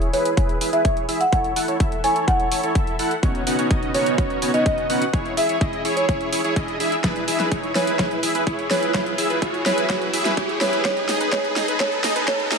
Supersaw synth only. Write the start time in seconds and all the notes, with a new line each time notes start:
Already playing: E4 G#4 C#5
0.13 E4 G#4 B4
0.37 E4 G#4 B4
0.61 E4 G#4 B4
0.73 E4 G#4 B4
0.85 E4 G#4 C#5
1.09 E4 G#4 E5
1.32 E4 A4 C#5
1.56 E4 A4 F#5
1.68 E4 A4 C#5
1.80 E4 A4 E5
2.04 E4 A4 C#5
2.28 E4 A4 C#5
2.52 E4 A4 C#5
2.63 E4 A4 C#5
2.75 E4 A4 E5
2.99 E4 A4 F#5
3.23 B3 C#4 D#4 F#4 C#5
3.47 B3 C#4 D#4 F#4 F#5
3.59 B3 C#4 D#4 F#4 C#5
3.71 B3 C#4 D#4 F#4 D#5
3.94 B3 C#4 D#4 F#4 C#5
4.18 B3 C#4 D#4 F#4 C#5
4.42 B3 C#4 D#4 F#4 C#5
4.54 B3 C#4 D#4 F#4 C#5
4.66 B3 C#4 D#4 F#4 D#5
4.90 B3 C#4 D#4 F#4 F#5
5.13 E4 G#4 C#5
5.37 E4 G#4 E5
5.49 E4 G#4 C#5
5.61 E4 G#4 D#5
5.85 E4 G#4 C#5
6.09 E4 G#4 C#5
6.33 E4 G#4 C#5
6.44 E4 G#4 C#5
6.56 E4 G#4 D#5
6.80 E4 G#4 E5
7.04 E4 G#4 B4
7.28 E4 G#4 E5
7.40 E4 G#4 B4
7.52 E4 G#4 C#5
7.75 E4 G#4 B4
7.99 E4 G#4 B4
8.23 E4 G#4 E5
8.35 E4 G#4 B4
8.47 E4 G#4 C#5
8.71 E4 G#4 B4
8.94 E4 G#4 B4
9.18 E4 G#4 E5
9.30 E4 G#4 B4
9.42 E4 G#4 C#5
9.66 E4 G#4 B4
9.90 E4 G#4 B4
10.13 E4 G#4 E5
10.25 E4 G#4 B4
10.37 E4 G#4 C#5
10.61 E4 G#4 B4
10.85 D#4 G#4 B4
11.09 D#4 G#4 D#5
11.21 D#4 G#4 B4
11.33 D#4 G#4 B4
11.56 D#4 G#4 D#5
11.68 D#4 G#4 B4
11.80 D#4 G#4 B4
12.04 D#4 G#4 D#5
12.16 D#4 G#4 B4
12.28 D#4 G#4 B4
12.52 D#4 G#4 D#5